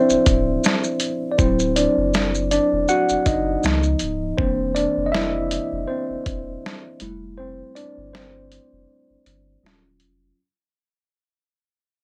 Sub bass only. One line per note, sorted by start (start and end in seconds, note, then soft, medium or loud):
0.10 0.17 D1 soft
0.27 0.57 D1 medium
1.39 1.87 D1 loud
1.98 2.59 F#1 medium
2.73 2.86 E1 medium
3.11 3.17 F#1 soft
3.27 3.57 F#1 medium
3.64 3.95 C#2 loud
4.02 4.32 C#1 medium
4.39 4.87 E1 loud
4.97 5.59 F1 medium
5.73 5.86 F1 medium
6.10 6.17 E1 medium
6.26 6.57 E1 medium
7.01 7.63 F1 medium
7.98 8.59 G1 medium
8.73 8.86 F1 medium
9.10 9.17 G1 soft
9.26 9.57 G1 medium
9.64 10.03 D#1 loud
10.02 10.32 F1 medium